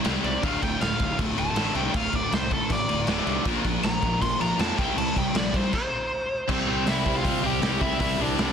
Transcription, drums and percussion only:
0.05 snare loud
0.05 crash medium
0.24 crash medium
0.43 kick loud
0.43 crash medium
0.62 kick medium
0.62 crash medium
0.81 snare loud
0.81 crash medium
0.99 kick medium
0.99 crash medium
1.19 kick loud
1.19 crash medium
1.38 crash medium
1.56 snare loud
1.56 crash medium
1.75 crash medium
1.94 kick loud
1.94 crash medium
2.13 kick medium
2.13 crash medium
2.32 snare loud
2.32 crash medium
2.51 kick medium
2.51 crash medium
2.70 kick loud
2.70 crash medium
2.89 crash medium
3.07 snare loud
3.07 crash medium
3.27 crash medium
3.45 kick loud
3.45 crash medium
3.65 kick loud
3.65 crash medium
3.83 snare loud
3.83 crash medium
4.02 kick medium
4.02 crash medium
4.22 kick loud
4.22 crash medium
4.41 crash medium
4.59 snare loud
4.59 crash medium
4.78 kick loud
4.78 crash medium
4.98 crash medium
5.16 kick loud
5.16 crash medium
5.35 snare loud
5.35 crash medium
5.54 kick medium
5.54 crash medium
5.73 kick loud
5.73 crash loud
6.49 kick loud
6.49 crash loud
6.87 snare loud
6.87 open hi-hat medium
7.06 kick loud
7.24 kick loud
7.24 open hi-hat medium
7.62 snare loud
7.62 open hi-hat medium
7.81 kick medium
8.00 kick loud
8.00 open hi-hat medium
8.38 snare loud
8.38 open hi-hat medium

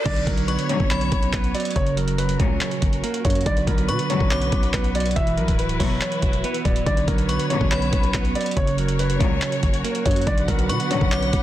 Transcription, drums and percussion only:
0.06 kick loud
0.06 closed hi-hat medium
0.06 crash loud
0.16 closed hi-hat medium
0.27 kick loud
0.27 closed hi-hat medium
0.37 closed hi-hat medium
0.48 closed hi-hat medium
0.59 closed hi-hat medium
0.69 closed hi-hat medium
0.80 kick loud
0.91 clap loud
0.91 closed hi-hat medium
1.01 closed hi-hat medium
1.12 kick loud
1.12 closed hi-hat medium
1.23 closed hi-hat medium
1.33 kick loud
1.33 clap loud
1.33 closed hi-hat loud
1.44 closed hi-hat medium
1.55 closed hi-hat medium
1.60 closed hi-hat medium
1.65 closed hi-hat medium
1.70 closed hi-hat soft
1.76 kick loud
1.76 closed hi-hat medium
1.86 closed hi-hat medium
1.97 closed hi-hat medium
2.08 closed hi-hat medium
2.18 closed hi-hat medium
2.29 closed hi-hat medium
2.40 kick loud
2.40 closed hi-hat medium
2.61 clap loud
2.61 closed hi-hat medium
2.71 closed hi-hat medium
2.82 kick loud
2.82 closed hi-hat medium
2.93 closed hi-hat medium
3.04 closed hi-hat loud
3.14 closed hi-hat medium
3.25 kick loud
3.25 closed hi-hat medium
3.30 closed hi-hat medium
3.35 closed hi-hat medium
3.41 closed hi-hat soft
3.46 kick loud
3.46 closed hi-hat medium
3.57 closed hi-hat medium
3.67 kick loud
3.67 closed hi-hat medium
3.78 closed hi-hat medium
3.89 closed hi-hat medium
3.99 closed hi-hat medium
4.10 closed hi-hat medium
4.20 kick loud
4.31 clap loud
4.31 closed hi-hat medium
4.42 closed hi-hat medium
4.52 kick loud
4.52 closed hi-hat medium
4.63 closed hi-hat medium
4.74 kick loud
4.74 clap loud
4.74 closed hi-hat loud
4.84 closed hi-hat medium
4.95 closed hi-hat medium
5.00 closed hi-hat medium
5.06 closed hi-hat medium
5.11 closed hi-hat soft
5.16 kick loud
5.16 closed hi-hat medium
5.27 closed hi-hat medium
5.37 closed hi-hat soft
5.48 kick medium
5.48 closed hi-hat medium
5.59 closed hi-hat medium
5.69 closed hi-hat medium
5.80 kick loud
5.80 open hi-hat medium
6.01 clap loud
6.01 closed hi-hat medium
6.12 closed hi-hat medium
6.22 kick loud
6.22 closed hi-hat medium
6.33 closed hi-hat medium
6.44 closed hi-hat loud
6.54 closed hi-hat medium
6.65 kick loud
6.65 closed hi-hat medium
6.76 closed hi-hat medium
6.86 kick loud
6.86 closed hi-hat medium
6.97 closed hi-hat medium
7.08 kick loud
7.08 closed hi-hat medium
7.18 closed hi-hat medium
7.29 closed hi-hat medium
7.39 closed hi-hat medium
7.50 closed hi-hat medium
7.61 kick loud
7.72 clap loud
7.72 closed hi-hat medium
7.82 closed hi-hat medium
7.93 kick loud
7.93 closed hi-hat medium
8.03 closed hi-hat medium
8.14 kick loud
8.14 clap loud
8.14 closed hi-hat loud
8.25 closed hi-hat medium
8.35 closed hi-hat medium
8.41 closed hi-hat medium
8.46 closed hi-hat medium
8.51 closed hi-hat soft
8.57 kick loud
8.57 closed hi-hat medium
8.67 closed hi-hat medium
8.78 closed hi-hat medium
8.88 closed hi-hat medium
8.99 closed hi-hat medium
9.10 closed hi-hat medium
9.20 kick loud
9.20 closed hi-hat medium
9.42 clap loud
9.42 closed hi-hat medium
9.52 closed hi-hat medium
9.63 kick loud
9.63 closed hi-hat medium
9.74 closed hi-hat medium
9.84 closed hi-hat medium
9.95 closed hi-hat medium
10.06 kick loud
10.06 closed hi-hat medium
10.11 closed hi-hat medium
10.16 closed hi-hat medium
10.22 closed hi-hat soft
10.27 kick loud
10.27 closed hi-hat medium
10.38 closed hi-hat medium
10.48 kick loud
10.48 closed hi-hat medium
10.59 closed hi-hat medium
10.69 closed hi-hat medium
10.80 closed hi-hat medium
10.91 closed hi-hat medium
11.01 kick medium
11.12 clap loud
11.12 closed hi-hat medium
11.22 closed hi-hat medium
11.33 kick loud
11.33 closed hi-hat medium

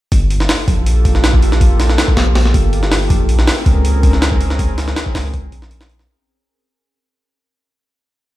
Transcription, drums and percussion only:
0.12 kick loud
0.12 open hi-hat medium
0.30 open hi-hat medium
0.40 snare medium
0.49 snare loud
0.49 open hi-hat medium
0.68 kick medium
0.68 open hi-hat medium
0.86 open hi-hat medium
1.05 kick loud
1.05 open hi-hat medium
1.15 snare soft
1.24 snare loud
1.24 open hi-hat medium
1.34 kick loud
1.42 open hi-hat medium
1.52 snare medium
1.61 kick loud
1.61 open hi-hat medium
1.80 snare medium
1.80 open hi-hat medium
1.90 snare medium
1.98 snare loud
1.98 open hi-hat medium
2.08 kick medium
2.17 snare loud
2.17 open hi-hat medium
2.35 snare loud
2.35 open hi-hat medium
2.45 snare medium
2.54 kick loud
2.54 open hi-hat medium
2.73 open hi-hat medium
2.83 snare soft
2.92 snare loud
2.92 open hi-hat medium
3.10 kick loud
3.10 open hi-hat medium
3.29 open hi-hat medium
3.39 snare medium
3.47 snare loud
3.47 open hi-hat medium
3.66 kick loud
3.66 open hi-hat medium
3.85 open hi-hat medium
4.03 kick loud
4.03 open hi-hat medium
4.13 snare soft
4.22 snare loud
4.22 open hi-hat medium
4.32 kick loud
4.41 open hi-hat medium
4.50 snare medium
4.59 kick loud
4.59 open hi-hat medium
4.78 snare medium
4.78 open hi-hat medium
4.88 snare medium
4.96 snare loud
4.96 open hi-hat medium
5.06 kick medium
5.15 snare loud
5.15 open hi-hat medium
5.34 kick medium
5.34 open hi-hat medium
5.52 open hi-hat medium
5.62 snare medium
5.71 open hi-hat medium
5.81 snare loud
5.89 open hi-hat medium
5.99 snare medium

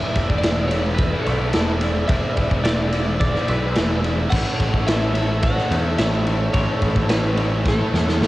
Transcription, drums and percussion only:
0.15 kick medium
0.15 ride medium
0.30 kick medium
0.43 snare loud
0.43 ride loud
0.71 ride medium
0.98 kick loud
0.98 ride loud
1.27 ride medium
1.53 snare loud
1.53 ride loud
1.81 ride medium
2.09 kick loud
2.09 ride loud
2.37 kick medium
2.37 ride medium
2.51 kick medium
2.65 snare loud
2.65 ride loud
2.92 ride medium
3.21 kick loud
3.21 ride medium
3.35 snare soft
3.48 ride medium
3.75 snare loud
3.75 ride loud
4.04 ride medium
4.32 kick loud
4.32 crash loud
4.60 kick medium
4.60 ride medium
4.74 kick medium
4.88 snare loud
4.88 ride loud
5.15 ride medium
5.42 kick loud
5.42 ride loud
5.58 snare soft
5.71 ride medium
5.98 snare loud
5.98 ride loud
6.27 ride medium
6.54 kick loud
6.54 ride medium
6.82 kick medium
6.82 ride medium
6.96 kick medium
7.09 snare loud
7.09 ride loud
7.37 ride medium
7.66 kick loud
7.66 snare medium
7.94 snare medium
8.09 snare medium
8.22 snare medium

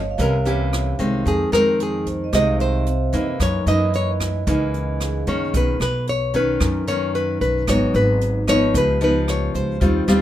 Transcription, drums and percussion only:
0.19 kick medium
0.19 closed hi-hat medium
0.46 closed hi-hat soft
0.73 cross-stick medium
0.73 closed hi-hat soft
0.99 kick soft
0.99 closed hi-hat soft
1.26 kick medium
1.26 closed hi-hat medium
1.53 cross-stick medium
1.53 closed hi-hat soft
1.80 closed hi-hat soft
2.06 kick soft
2.06 closed hi-hat soft
2.33 kick medium
2.33 cross-stick medium
2.33 closed hi-hat medium
2.60 closed hi-hat soft
2.86 closed hi-hat soft
3.13 kick soft
3.13 closed hi-hat soft
3.40 kick medium
3.40 cross-stick medium
3.40 closed hi-hat medium
3.67 closed hi-hat soft
3.93 closed hi-hat soft
4.20 kick soft
4.20 cross-stick medium
4.20 closed hi-hat soft
4.47 kick medium
4.47 closed hi-hat medium
4.74 closed hi-hat soft
5.00 cross-stick medium
5.00 closed hi-hat soft
5.27 kick soft
5.27 closed hi-hat soft
5.54 kick medium
5.54 closed hi-hat medium
5.81 cross-stick medium
5.81 closed hi-hat soft
6.07 closed hi-hat soft
6.34 kick soft
6.34 closed hi-hat soft
6.60 kick medium
6.60 cross-stick medium
6.60 closed hi-hat medium
6.87 closed hi-hat soft
7.15 closed hi-hat soft
7.41 kick soft
7.41 closed hi-hat soft
7.67 kick medium
7.67 cross-stick medium
7.67 closed hi-hat medium
7.94 closed hi-hat soft
8.21 closed hi-hat soft
8.48 kick soft
8.48 cross-stick medium
8.48 closed hi-hat soft
8.74 kick medium
8.74 closed hi-hat medium
9.01 closed hi-hat soft
9.28 cross-stick medium
9.28 closed hi-hat soft
9.55 kick soft
9.55 closed hi-hat soft
9.81 kick medium
9.81 closed hi-hat medium
10.08 cross-stick medium
10.08 closed hi-hat soft

